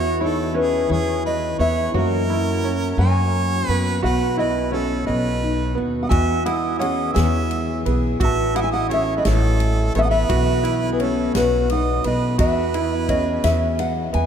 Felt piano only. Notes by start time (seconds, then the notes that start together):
Already playing: F#4
0.20 E4
0.54 C#4
1.59 B3
1.95 F#4
2.30 E4
2.64 C#4
3.69 B3
4.03 F#4
4.37 E4
4.72 C#4
5.75 B3
6.11 F#4
6.46 E4
6.79 C#4
7.85 B3
8.20 F#4
8.55 E4
8.90 C#4
9.95 B3
10.29 F#4
10.63 E4
11.00 C#4
12.05 B3
12.38 F#4
12.75 E4
13.09 C#4
14.13 B3